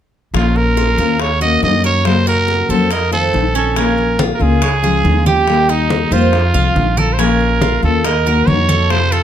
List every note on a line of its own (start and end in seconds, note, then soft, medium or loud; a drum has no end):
0.34 0.94 A#1 medium
0.34 0.97 F3 medium
0.34 0.98 A#3 medium
0.34 0.98 C#4 medium
0.34 0.98 F4 medium
0.34 0.59 F4 medium
0.34 0.97 C5 medium
0.34 high bongo medium
0.56 1.23 A#4 medium
0.56 high bongo soft
0.77 0.98 F4 medium
0.77 high bongo soft
0.98 1.58 D#2 medium
0.98 1.19 A#3 medium
0.98 1.19 C#4 medium
0.98 1.19 F4 medium
0.98 1.40 A#4 medium
0.98 1.19 C5 medium
0.98 high bongo soft
1.20 1.42 C#5 medium
1.20 muted steel-string acoustic guitar stroke medium
1.20 high bongo medium
1.40 1.62 A#3 medium
1.40 1.62 C#4 medium
1.40 1.61 F#4 medium
1.40 1.83 F#4 medium
1.40 1.62 D#5 medium
1.40 high bongo soft
1.62 2.63 F#2 medium
1.62 2.05 D#3 soft
1.62 2.05 A#3 medium
1.62 2.05 C#4 medium
1.62 2.06 F#4 medium
1.62 1.83 D#5 medium
1.62 high bongo soft
1.62 low bongo medium
1.84 2.26 A#4 medium
1.84 2.08 C#5 medium
2.05 2.68 C#3 medium
2.05 2.69 F#3 medium
2.05 2.69 A#3 medium
2.05 2.69 C#4 medium
2.05 2.68 F#4 medium
2.05 2.27 C5 medium
2.05 high bongo medium
2.26 2.68 F#4 medium
2.26 2.72 A#4 medium
2.26 high bongo soft
2.48 high bongo medium
2.69 3.30 F2 medium
2.69 2.90 F#3 medium
2.69 2.91 A#3 medium
2.69 2.90 C#4 medium
2.69 2.90 F#4 medium
2.69 2.94 A4 medium
2.69 2.91 C5 medium
2.69 high bongo soft
2.90 3.13 A#4 medium
2.90 3.12 D#5 medium
2.90 muted steel-string acoustic guitar stroke medium
2.90 high bongo medium
3.11 3.32 D#3 soft
3.11 3.33 A3 medium
3.11 3.33 C4 medium
3.11 3.32 F4 medium
3.11 3.53 A4 medium
3.11 3.54 C5 medium
3.11 high bongo soft
3.33 4.34 A#1 medium
3.33 3.75 D#3 soft
3.33 3.76 A3 medium
3.33 3.76 C4 medium
3.33 3.77 F4 medium
3.33 high bongo soft
3.33 low bongo medium
3.55 3.75 C#4 medium
3.55 3.80 A4 medium
3.76 4.40 F3 medium
3.76 4.40 A#3 medium
3.76 4.18 C#4 medium
3.76 4.40 C#4 medium
3.76 4.38 F4 medium
3.76 4.20 A#4 medium
3.76 high bongo medium
3.76 high conga soft
3.98 high bongo soft
3.98 high conga soft
4.19 4.61 F4 medium
4.19 high bongo medium
4.19 high conga medium
4.35 4.44 A#4 medium
4.39 5.01 C#2 medium
4.39 4.62 A#3 medium
4.39 4.61 C#4 medium
4.39 4.61 F4 medium
4.39 5.27 G#4 medium
4.39 high bongo soft
4.39 high conga soft
4.62 4.83 C#5 medium
4.62 muted steel-string acoustic guitar stroke medium
4.62 high bongo medium
4.62 high conga soft
4.82 5.02 F3 medium
4.82 5.03 G#3 medium
4.82 5.04 C#4 medium
4.82 5.04 F4 medium
4.82 5.25 G#4 medium
4.82 high bongo soft
4.82 high conga soft
5.03 6.05 D#2 medium
5.03 5.46 F3 medium
5.03 5.47 G#3 medium
5.03 5.47 C#4 medium
5.03 5.47 F4 medium
5.03 high bongo soft
5.03 low bongo medium
5.03 high conga medium
5.26 5.68 G4 medium
5.26 5.72 G4 medium
5.26 high conga medium
5.47 6.11 D#3 medium
5.47 6.11 G3 medium
5.47 6.11 A#3 medium
5.47 6.11 D#4 medium
5.47 6.10 G4 medium
5.47 high bongo medium
5.47 high conga soft
5.69 6.11 D#4 medium
5.69 6.15 D#4 loud
5.69 high bongo soft
5.69 high conga soft
5.90 high bongo medium
5.90 high conga medium
6.11 6.51 F2 medium
6.11 6.33 G3 medium
6.11 6.33 A#3 medium
6.11 6.32 D#4 medium
6.11 7.00 F4 medium
6.11 6.32 G4 medium
6.11 6.53 C5 medium
6.11 high bongo soft
6.11 high conga soft
6.33 muted steel-string acoustic guitar stroke medium
6.33 high bongo medium
6.33 high conga soft
6.54 6.74 C2 medium
6.54 6.75 F3 soft
6.54 6.75 A3 medium
6.54 6.75 C4 medium
6.54 6.75 F4 medium
6.54 6.96 F5 medium
6.54 high bongo soft
6.54 high conga soft
6.75 7.77 A#1 medium
6.75 7.16 F3 medium
6.75 7.18 A3 soft
6.75 7.19 C4 medium
6.75 7.19 F4 medium
6.75 high bongo soft
6.75 low bongo medium
6.75 high conga medium
6.97 7.15 A4 medium
6.97 7.18 A#4 medium
6.97 high conga medium
7.13 7.22 C5 medium
7.18 7.82 F3 medium
7.18 7.82 A#3 medium
7.18 7.61 C#4 medium
7.18 7.82 C#4 medium
7.18 7.81 F4 medium
7.18 7.84 A#4 medium
7.18 high bongo medium
7.18 high conga soft
7.40 high bongo soft
7.40 high conga soft
7.62 8.03 F4 medium
7.62 high bongo medium
7.62 high conga medium
7.82 8.43 D#2 medium
7.82 8.04 A#3 medium
7.82 8.04 C#4 medium
7.82 8.03 F4 medium
7.82 8.07 A4 medium
7.82 high bongo soft
7.82 high conga soft
8.04 8.49 A#4 medium
8.04 8.25 D#5 medium
8.04 muted steel-string acoustic guitar stroke medium
8.04 high bongo medium
8.04 high conga soft
8.25 8.47 A#3 medium
8.25 8.47 D#4 medium
8.25 8.46 F#4 medium
8.25 8.68 A#4 medium
8.25 high bongo soft
8.25 high conga soft
8.47 9.23 F2 medium
8.47 8.89 D#3 medium
8.47 8.90 A#3 medium
8.47 8.90 D#4 medium
8.47 8.90 F#4 medium
8.47 8.93 C#5 medium
8.47 high bongo soft
8.47 low bongo medium
8.47 high conga medium
8.69 9.11 A4 medium
8.69 high conga medium
8.89 9.23 C3 medium
8.89 9.23 F3 medium
8.89 9.23 A3 medium
8.89 9.23 C4 medium
8.89 9.23 F4 medium
8.89 9.14 C5 loud
8.89 high bongo medium
8.89 high conga soft
9.12 9.23 F4 medium
9.12 9.23 A4 loud
9.12 high bongo soft
9.12 high conga soft